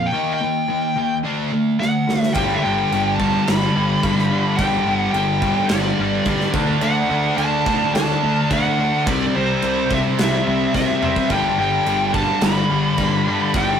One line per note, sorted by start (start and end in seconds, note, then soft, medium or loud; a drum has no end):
0.00 0.10 A#2 medium
0.00 0.10 F3 medium
0.06 0.33 G5 loud
0.12 0.38 D#3 medium
0.12 0.39 A#3 medium
0.12 0.39 D#4 loud
0.34 1.17 G5 medium
0.41 0.65 D#3 medium
0.41 0.65 A#3 medium
0.68 0.93 D#3 medium
0.68 0.93 A#3 medium
0.96 1.21 D#3 medium
0.96 1.22 A#3 medium
1.23 1.50 D3 medium
1.23 1.50 A3 medium
1.23 1.50 D4 medium
1.51 1.77 D3 medium
1.51 1.77 A3 medium
1.79 2.05 D3 medium
1.79 2.05 A3 medium
1.79 2.21 F#5 medium
1.79 snare medium
2.07 2.33 D3 medium
2.07 2.33 A3 medium
2.07 snare medium
2.21 2.32 E5 medium
2.21 snare medium
2.34 2.55 G1 medium
2.34 2.63 G2 medium
2.34 2.62 D3 medium
2.34 2.64 G3 loud
2.34 2.56 G5 loud
2.34 kick loud
2.34 crash medium
2.54 2.63 E5 medium
2.62 2.84 G1 medium
2.62 2.91 G2 medium
2.62 2.91 D3 medium
2.62 2.92 G3 loud
2.62 3.15 G5 medium
2.91 3.31 G1 loud
2.91 3.17 G2 medium
2.91 3.17 D3 loud
2.91 3.18 G3 loud
2.91 crash medium
3.16 3.45 G2 medium
3.16 3.46 D3 medium
3.16 3.46 G3 loud
3.16 3.46 A5 loud
3.20 kick medium
3.43 3.74 G2 medium
3.43 3.75 D3 medium
3.43 4.61 B5 loud
3.47 3.68 G1 medium
3.47 3.75 G3 medium
3.47 snare loud
3.47 crash medium
3.75 3.95 G1 medium
3.75 4.02 G2 medium
3.75 4.02 D3 medium
3.75 4.02 G3 medium
4.03 4.42 G2 loud
4.03 4.29 G2 medium
4.03 4.30 D3 medium
4.03 4.30 G3 medium
4.03 kick medium
4.03 crash medium
4.18 snare soft
4.30 4.57 G2 medium
4.30 4.57 D3 medium
4.30 4.58 G3 medium
4.56 4.78 G1 loud
4.56 4.84 G2 medium
4.56 4.85 D3 loud
4.56 4.85 G3 loud
4.56 4.95 G5 medium
4.56 kick loud
4.56 crash medium
4.86 5.06 G1 medium
4.86 5.12 G2 medium
4.86 5.12 D3 medium
4.86 5.13 G3 medium
4.95 5.10 F#5 medium
5.11 5.53 G1 loud
5.11 5.40 G2 medium
5.11 5.41 D3 loud
5.11 5.41 G3 medium
5.11 5.65 G5 medium
5.11 crash medium
5.42 5.70 G2 loud
5.42 5.70 D3 loud
5.42 5.71 G3 loud
5.42 kick medium
5.69 5.90 G1 medium
5.69 5.98 G2 medium
5.69 5.98 D3 medium
5.69 5.99 G3 medium
5.69 6.50 D5 medium
5.69 snare loud
5.69 crash medium
5.99 6.19 G1 medium
5.99 6.25 G2 medium
5.99 6.25 D3 medium
5.99 6.25 G3 medium
6.25 6.46 G2 medium
6.25 6.53 G2 medium
6.25 6.53 D3 loud
6.25 6.53 G3 loud
6.25 kick medium
6.25 crash medium
6.40 snare soft
6.54 6.74 D2 medium
6.54 6.81 D3 medium
6.54 6.81 A3 medium
6.54 6.82 D4 loud
6.54 kick loud
6.81 7.02 D2 medium
6.81 7.08 D3 medium
6.81 7.08 A3 loud
6.81 7.09 D4 loud
6.81 7.35 F#5 medium
6.81 crash medium
7.09 7.30 D2 loud
7.09 7.36 D3 medium
7.09 7.37 A3 medium
7.09 7.37 D4 medium
7.37 7.78 D2 medium
7.37 7.65 D3 loud
7.37 7.65 A3 medium
7.37 7.65 D4 loud
7.37 7.93 A5 medium
7.37 crash medium
7.66 7.93 D3 medium
7.66 7.94 A3 loud
7.66 7.94 D4 medium
7.66 kick loud
7.94 8.14 D2 medium
7.94 8.21 D3 medium
7.94 8.22 A3 medium
7.94 8.22 D4 loud
7.94 8.52 A5 loud
7.94 snare loud
7.94 crash medium
8.23 8.43 D2 medium
8.23 8.50 D3 medium
8.23 8.51 A3 medium
8.23 8.51 D4 loud
8.51 8.90 D2 medium
8.51 8.79 D3 medium
8.51 8.80 A3 loud
8.51 8.79 D4 loud
8.51 9.09 F#5 medium
8.51 kick medium
8.51 crash medium
8.80 9.05 D3 medium
8.80 9.06 A3 medium
8.80 9.06 D4 medium
9.06 9.26 C2 medium
9.06 9.35 C3 loud
9.06 9.36 G3 loud
9.06 9.36 C4 loud
9.06 9.33 D5 medium
9.06 kick loud
9.06 crash medium
9.35 9.55 C2 medium
9.35 9.61 C3 medium
9.35 9.62 G3 medium
9.35 9.62 C4 medium
9.35 9.93 C5 medium
9.62 10.02 C2 medium
9.62 9.89 C3 medium
9.62 9.90 G3 medium
9.62 9.91 C4 loud
9.62 crash medium
9.91 10.18 C3 medium
9.91 10.19 G3 medium
9.91 10.19 C4 loud
9.91 10.01 E5 loud
9.91 kick medium
10.19 10.39 C2 medium
10.19 10.45 C3 medium
10.19 10.46 G3 medium
10.19 10.46 C4 medium
10.19 10.74 E5 medium
10.19 snare loud
10.19 crash medium
10.46 10.67 C2 medium
10.46 10.72 C3 medium
10.46 10.74 G3 medium
10.46 10.74 C4 medium
10.73 11.00 C3 medium
10.73 11.14 C3 medium
10.73 11.02 G3 loud
10.73 11.01 C4 loud
10.73 11.33 E5 loud
10.73 kick medium
10.73 snare medium
11.01 11.28 C3 medium
11.01 11.31 G3 medium
11.01 11.29 C4 medium
11.01 mid tom medium
11.16 kick loud
11.30 11.50 G1 medium
11.30 11.58 G2 loud
11.30 11.58 D3 loud
11.30 11.59 G3 loud
11.30 11.58 G5 loud
11.30 kick medium
11.30 crash medium
11.58 11.78 G1 medium
11.58 11.86 G2 medium
11.58 11.85 D3 loud
11.58 11.86 G3 loud
11.58 12.11 G5 medium
11.86 12.26 G1 medium
11.86 12.12 G2 medium
11.86 12.13 D3 medium
11.86 12.14 G3 loud
11.86 crash medium
12.13 12.41 G2 loud
12.13 12.42 D3 loud
12.13 12.42 G3 loud
12.13 12.40 A5 loud
12.13 kick medium
12.41 12.62 G1 medium
12.41 12.68 G2 medium
12.41 12.69 D3 medium
12.41 12.70 G3 medium
12.41 13.58 B5 loud
12.41 snare loud
12.41 crash medium
12.69 12.90 G1 loud
12.69 12.97 G2 medium
12.69 12.98 D3 medium
12.69 12.98 G3 loud
12.98 13.37 G2 medium
12.98 13.26 G2 medium
12.98 13.27 D3 loud
12.98 13.27 G3 loud
12.98 kick medium
12.98 crash medium
13.27 13.54 G2 medium
13.27 13.54 D3 medium
13.27 13.54 G3 loud
13.54 13.74 G1 loud
13.54 13.79 G2 medium
13.54 13.80 D3 loud
13.54 13.80 G3 loud
13.54 13.80 G5 medium
13.54 kick loud
13.54 crash medium